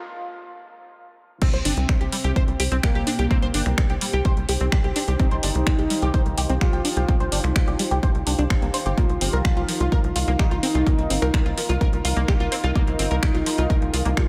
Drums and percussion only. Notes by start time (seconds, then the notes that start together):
1.42 kick, closed hi-hat, crash
1.53 closed hi-hat
1.65 open hi-hat
1.77 closed hi-hat
1.89 finger snap, kick, closed hi-hat
2.01 closed hi-hat
2.12 open hi-hat
2.24 closed hi-hat
2.36 kick, closed hi-hat
2.48 closed hi-hat
2.60 open hi-hat
2.72 closed hi-hat
2.83 finger snap, kick, closed hi-hat
2.95 closed hi-hat
3.07 open hi-hat
3.19 closed hi-hat
3.31 kick, closed hi-hat
3.42 closed hi-hat
3.54 open hi-hat
3.66 finger snap, closed hi-hat
3.78 finger snap, kick, closed hi-hat
3.90 closed hi-hat
4.01 open hi-hat
4.13 closed hi-hat
4.25 kick, closed hi-hat
4.37 closed hi-hat
4.49 open hi-hat
4.72 finger snap, kick, closed hi-hat
4.84 closed hi-hat
4.96 open hi-hat
5.19 kick, closed hi-hat
5.31 closed hi-hat
5.43 open hi-hat
5.55 closed hi-hat
5.67 finger snap, kick, closed hi-hat
5.79 closed hi-hat
5.90 open hi-hat
6.02 closed hi-hat
6.14 kick, closed hi-hat
6.26 closed hi-hat
6.38 open hi-hat
6.61 finger snap, kick, closed hi-hat
6.73 closed hi-hat
6.85 open hi-hat
6.97 closed hi-hat
7.09 kick, closed hi-hat
7.20 closed hi-hat
7.32 open hi-hat
7.44 finger snap
7.56 finger snap, kick, closed hi-hat
7.68 closed hi-hat
7.79 open hi-hat
7.91 closed hi-hat
8.03 kick, closed hi-hat
8.15 closed hi-hat
8.27 open hi-hat
8.38 closed hi-hat
8.50 finger snap, kick, closed hi-hat
8.62 closed hi-hat
8.74 open hi-hat
8.86 closed hi-hat
8.98 kick, closed hi-hat
9.09 closed hi-hat
9.21 open hi-hat
9.45 finger snap, kick, closed hi-hat
9.57 closed hi-hat
9.69 open hi-hat
9.80 closed hi-hat
9.92 kick, closed hi-hat
10.04 closed hi-hat
10.16 open hi-hat
10.39 finger snap, kick, closed hi-hat
10.51 closed hi-hat
10.63 open hi-hat
10.75 closed hi-hat
10.87 kick, closed hi-hat
10.99 closed hi-hat
11.10 open hi-hat
11.22 finger snap, closed hi-hat
11.34 finger snap, kick, closed hi-hat
11.46 closed hi-hat
11.58 open hi-hat
11.70 closed hi-hat
11.81 kick, closed hi-hat
11.93 closed hi-hat
12.05 open hi-hat
12.17 closed hi-hat
12.28 finger snap, kick, closed hi-hat
12.40 closed hi-hat
12.52 open hi-hat
12.64 closed hi-hat
12.76 kick, closed hi-hat
12.87 closed hi-hat
12.99 open hi-hat
13.11 closed hi-hat
13.23 finger snap, kick, closed hi-hat
13.35 closed hi-hat
13.46 open hi-hat
13.58 closed hi-hat
13.70 kick, closed hi-hat
13.82 closed hi-hat
13.94 open hi-hat
14.05 closed hi-hat
14.17 finger snap, kick, closed hi-hat